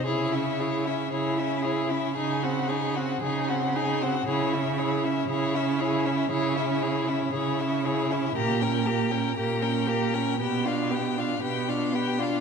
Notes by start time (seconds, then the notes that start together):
0.05 C#3 E4 G#4 C#5
0.33 C#4 E4 E5
0.60 E4 G#4 C#5
0.85 C#4 E4 E5
1.11 C#3 E4 G#4 C#5
1.37 C#4 E4 E5
1.62 E4 G#4 C#5
1.89 C#4 E4 E5
2.15 C#3 D#4 G#4 G#5
2.42 C4 F#4 F#5
2.68 D#4 G#4 G#5
2.95 C4 F#4 F#5
3.22 C#3 D#4 G#4 G#5
3.48 C4 F#4 F#5
3.76 D#4 G#4 G#5
4.01 C4 F#4 F#5
4.27 C#3 E4 G#4 C#5
4.53 C#4 E4 E5
4.78 E4 G#4 C#5
5.04 C#4 E4 E5
5.29 C#3 E4 G#4 C#5
5.54 C#4 E4 E5
5.79 E4 G#4 C#5
6.05 C#4 E4 E5
6.30 C#3 E4 G#4 C#5
6.56 C#4 E4 E5
6.82 E4 G#4 C#5
7.08 C#4 E4 E5
7.33 C#3 E4 G#4 C#5
7.59 C#4 E4 E5
7.85 E4 G#4 C#5
8.11 C#4 E4 E5
8.36 A#2 A#3 G4 A#5
8.61 C#4 A#4 G5
8.85 A#3 G4 A#5
9.11 C#4 A#4 G5
9.36 A#2 A#3 G4 A#5
9.62 C#4 A#4 G5
9.87 A#3 G4 A#5
10.13 C#4 A#4 G5
10.39 B2 B3 G4 G5
10.65 D4 F4 F5
10.91 B3 G4 G5
11.17 D4 F4 F5
11.42 B2 B3 G4 G5
11.68 D4 F4 F5
11.93 B3 G4 G5
12.18 D4 F4 F5